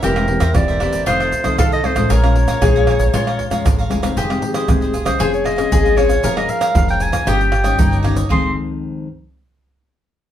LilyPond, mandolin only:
\new Staff \with { instrumentName = "Mandolin" } { \time 4/4 \key bes \minor \tempo 4 = 116 g'2 f'4 a'4 | bes'4 aes'4 f'4. r8 | \key f \minor g'2 aes'4 aes'4 | bes'2 g'4 ees'4 |
c'8 r2. r8 | }